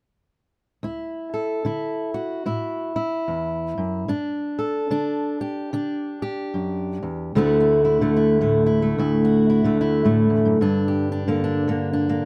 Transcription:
0.83 1.58 D2 medium
0.83 1.65 E4 medium
1.34 2.14 A4 soft
1.65 2.40 D3 soft
1.65 2.45 E4 soft
2.14 2.95 F#4 soft
2.46 3.21 A2 medium
2.46 2.95 E4 medium
2.96 4.09 E4 medium
3.28 3.77 E2 soft
3.78 4.08 F#2 soft
4.08 4.84 G2 medium
4.08 4.90 D4 medium
4.59 5.40 A4 soft
4.91 5.66 D3 medium
4.91 5.72 D4 medium
5.41 6.21 G4 medium
5.73 6.48 D3 medium
5.73 7.32 D4 medium
6.22 7.32 G4 medium
6.54 7.02 F#2 medium
7.03 7.35 E2 medium
7.35 8.97 D2 medium
7.35 8.00 D3 medium
7.35 8.01 A3 medium
7.35 7.83 E4 medium
7.35 7.59 F#4 medium
7.60 9.24 F#4 medium
7.85 8.15 E4 soft
8.01 9.63 D3 medium
8.01 8.40 A3 soft
8.16 8.65 E4 medium
8.41 9.64 A2 medium
8.41 8.81 A3 medium
8.66 8.98 E4 medium
8.82 9.64 A3 soft
8.98 10.29 D2 medium
8.98 9.48 E4 medium
9.25 10.59 F#4 soft
9.50 9.80 E4 medium
9.64 11.26 D3 medium
9.64 10.04 A3 medium
9.81 10.58 E4 medium
10.05 10.62 A2 medium
10.05 10.58 A3 medium
10.30 10.45 E2 medium
10.45 10.61 F#2 medium
10.61 12.24 G2 medium
10.61 11.11 D4 medium
10.88 12.25 G4 medium
11.12 11.43 D4 medium
11.28 11.66 D3 medium
11.28 11.68 A#3 medium
11.44 11.92 D4 medium
11.68 12.25 D3 medium
11.68 12.08 A#3 medium
11.93 12.24 D4 medium
12.09 12.25 A#3 medium

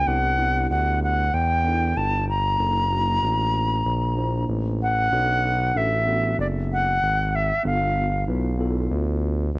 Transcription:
0.06 0.67 C2 loud
0.06 0.30 B3 medium
0.06 0.30 D4 medium
0.06 0.31 E4 medium
0.06 0.31 G4 medium
0.06 0.70 F#5 loud
0.37 1.23 B3 medium
0.37 1.24 D4 medium
0.37 1.24 E4 medium
0.37 1.24 G4 medium
0.71 1.30 D2 medium
0.71 1.00 F#5 medium
1.03 1.35 F#5 medium
1.34 1.93 E2 medium
1.34 1.98 G5 medium
1.63 2.26 B3 medium
1.63 2.26 D4 medium
1.63 1.73 D#4 soft
1.63 2.27 A4 medium
1.71 2.30 E4 medium
1.96 2.56 G1 loud
1.96 2.28 A5 medium
2.29 4.45 A#5 loud
2.57 3.19 F#1 loud
2.57 2.82 A#3 medium
2.57 2.83 D4 medium
2.57 2.83 E4 medium
2.57 2.83 A4 medium
2.90 3.76 A#3 medium
2.90 3.77 D4 medium
2.90 3.77 E4 medium
2.90 3.77 F#4 medium
3.23 3.82 A1 medium
3.86 4.45 A#1 loud
4.16 4.78 A#3 medium
4.16 4.79 D4 medium
4.16 4.79 E4 medium
4.16 4.80 C5 medium
4.49 5.09 A1 medium
4.83 5.79 F#5 loud
5.11 5.72 B1 loud
5.11 5.55 C#4 medium
5.11 5.56 D4 medium
5.11 5.56 F#4 medium
5.11 5.56 A4 medium
5.75 6.35 A1 medium
5.75 5.99 C#4 medium
5.75 5.99 D4 medium
5.75 5.99 F#4 medium
5.75 6.00 A4 medium
5.75 6.39 E5 medium
6.06 6.92 B3 medium
6.06 6.92 D4 medium
6.06 6.93 F#4 medium
6.06 6.93 A4 medium
6.38 6.98 F#1 medium
6.38 6.47 D5 medium
6.73 7.37 F#5 medium
7.02 7.51 G#1 loud
7.35 7.65 E5 medium
7.54 7.58 G#1 soft
7.63 8.25 G1 loud
7.63 8.08 B3 medium
7.63 8.08 D4 medium
7.63 8.09 F4 medium
7.63 8.09 A4 medium
7.63 8.24 F5 medium
8.27 8.88 B1 medium
8.27 8.51 B3 medium
8.27 8.51 E4 medium
8.27 8.52 F4 medium
8.27 8.52 B4 medium
8.58 9.45 B3 medium
8.58 9.45 E4 medium
8.58 9.46 F4 medium
8.58 9.46 A4 loud
8.91 9.51 D2 loud
9.55 9.59 C#2 medium

